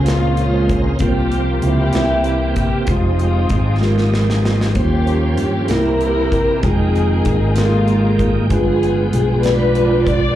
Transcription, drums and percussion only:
0.06 snare medium
0.06 closed hi-hat medium
0.37 closed hi-hat soft
0.69 kick medium
0.69 closed hi-hat medium
0.99 kick medium
0.99 closed hi-hat medium
1.32 closed hi-hat soft
1.62 closed hi-hat medium
1.93 snare medium
1.93 closed hi-hat medium
2.24 closed hi-hat soft
2.56 kick medium
2.56 closed hi-hat medium
2.87 kick medium
2.87 closed hi-hat medium
3.19 closed hi-hat soft
3.49 kick medium
3.49 closed hi-hat medium
3.82 snare soft
3.98 snare soft
4.14 snare medium
4.30 snare medium
4.45 snare medium
4.61 snare medium
4.75 kick medium
4.75 closed hi-hat medium
5.07 closed hi-hat soft
5.38 closed hi-hat medium
5.68 snare medium
5.68 closed hi-hat medium
6.01 closed hi-hat soft
6.32 kick medium
6.32 closed hi-hat medium
6.63 kick medium
6.63 closed hi-hat medium
6.96 closed hi-hat soft
7.25 kick medium
7.25 closed hi-hat medium
7.56 snare medium
7.56 closed hi-hat medium
7.88 closed hi-hat soft
8.19 kick medium
8.19 closed hi-hat medium
8.50 kick medium
8.50 closed hi-hat medium
8.83 closed hi-hat soft
9.13 closed hi-hat medium
9.43 snare medium
9.43 closed hi-hat medium
9.75 closed hi-hat soft
10.07 kick medium
10.07 closed hi-hat medium

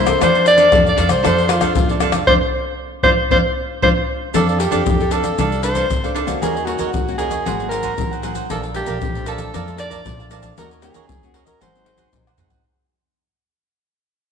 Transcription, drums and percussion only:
0.07 pandeiro medium
0.07 tamborim medium
0.07 shaker medium
0.07 surdo soft
0.21 pandeiro medium
0.21 tamborim medium
0.21 shaker medium
0.21 surdo medium
0.35 pandeiro soft
0.35 shaker soft
0.46 pandeiro medium
0.46 shaker medium
0.58 pandeiro medium
0.58 shaker medium
0.72 pandeiro medium
0.72 tamborim medium
0.72 shaker medium
0.72 surdo loud
0.86 pandeiro soft
0.86 shaker soft
0.86 surdo soft
0.98 pandeiro medium
1.09 pandeiro medium
1.09 tamborim medium
1.09 shaker medium
1.09 surdo soft
1.25 pandeiro medium
1.25 tamborim medium
1.25 shaker medium
1.25 surdo medium
1.38 pandeiro soft
1.38 shaker soft
1.49 pandeiro medium
1.49 tamborim medium
1.49 shaker medium
1.61 pandeiro medium
1.61 tamborim medium
1.61 shaker medium
1.61 surdo soft
1.75 pandeiro medium
1.75 shaker medium
1.75 surdo medium
1.89 pandeiro soft
1.89 shaker soft
2.00 pandeiro medium
2.00 tamborim medium
2.00 shaker medium
2.12 pandeiro medium
2.12 tamborim medium
2.12 shaker medium
2.12 surdo soft
2.27 surdo loud
3.03 surdo medium
3.30 surdo medium
3.83 surdo medium
4.34 pandeiro medium
4.34 shaker medium
4.34 surdo medium
4.49 pandeiro soft
4.49 shaker soft
4.60 pandeiro medium
4.60 shaker medium
4.72 pandeiro medium
4.72 shaker medium
4.86 pandeiro medium
4.86 shaker medium
4.86 surdo loud
5.00 pandeiro soft
5.00 shaker soft
5.00 surdo soft
5.11 pandeiro medium
5.11 shaker medium
5.24 pandeiro medium
5.24 shaker medium
5.24 surdo soft
5.38 pandeiro medium
5.38 shaker medium
5.38 surdo medium
5.52 pandeiro soft
5.52 shaker soft
5.63 pandeiro medium
5.63 shaker medium
5.75 pandeiro medium
5.75 shaker medium
5.75 surdo soft
5.90 pandeiro medium
5.90 shaker medium
5.90 surdo medium
6.04 pandeiro soft
6.04 shaker soft
6.16 pandeiro medium
6.28 pandeiro medium
6.28 shaker medium
6.28 surdo soft
6.43 pandeiro medium
6.43 shaker medium
6.43 surdo medium
6.57 pandeiro soft
6.57 shaker soft
6.67 pandeiro medium
6.79 pandeiro soft
6.79 shaker medium
6.94 pandeiro medium
6.94 shaker medium
6.94 surdo loud
7.08 pandeiro soft
7.08 shaker soft
7.08 surdo soft
7.19 pandeiro medium
7.19 shaker medium
7.31 pandeiro medium
7.31 shaker medium
7.31 surdo soft
7.46 pandeiro medium
7.46 shaker medium
7.46 surdo soft
7.60 pandeiro soft
7.60 shaker soft
7.71 pandeiro medium
7.71 shaker medium
7.83 pandeiro medium
7.83 shaker medium
7.83 surdo soft
7.98 pandeiro medium
7.98 shaker medium
7.98 surdo medium
8.13 pandeiro soft
8.13 shaker soft
8.23 pandeiro medium
8.23 shaker medium
8.35 pandeiro medium
8.35 shaker medium
8.35 surdo soft
8.50 pandeiro medium
8.50 shaker medium
8.50 surdo medium
8.63 pandeiro soft
8.63 shaker soft
8.75 pandeiro medium
8.86 pandeiro medium
8.86 shaker medium
9.01 pandeiro medium
9.01 shaker medium
9.01 surdo loud
9.15 pandeiro soft
9.15 shaker soft
9.15 surdo soft
9.26 pandeiro medium
9.26 shaker medium
9.38 pandeiro medium
9.38 shaker medium
9.38 surdo soft
9.54 pandeiro medium
9.54 shaker medium
9.54 surdo medium
9.68 pandeiro soft
9.68 shaker soft
9.78 pandeiro medium
9.78 shaker medium
9.91 pandeiro soft
9.91 shaker medium
9.91 surdo soft
10.06 pandeiro medium
10.06 shaker medium
10.06 surdo medium
10.20 pandeiro soft
10.20 shaker soft
10.31 pandeiro medium
10.31 shaker medium
10.43 pandeiro medium
10.43 shaker medium
10.43 surdo soft
10.58 pandeiro medium
10.58 shaker medium
10.58 surdo medium
10.71 pandeiro soft
10.71 shaker soft
10.82 pandeiro medium
10.82 shaker medium
10.94 pandeiro soft
10.94 shaker medium
11.09 pandeiro medium
11.09 shaker medium
11.09 surdo loud
11.23 pandeiro soft
11.23 shaker soft
11.23 surdo soft
11.34 pandeiro medium
11.47 pandeiro soft
11.47 shaker medium
11.47 surdo soft
11.61 pandeiro medium
11.61 shaker medium
11.61 surdo soft
11.75 pandeiro soft
11.75 shaker soft
11.86 pandeiro medium
11.98 pandeiro soft
11.98 shaker medium
11.98 surdo soft
12.13 pandeiro medium
12.13 shaker medium
12.13 surdo medium
12.27 pandeiro soft
12.27 tamborim medium
12.27 shaker soft
12.38 surdo medium
12.38 pandeiro medium
12.38 shaker medium
12.50 pandeiro medium
12.50 shaker medium
12.50 surdo medium

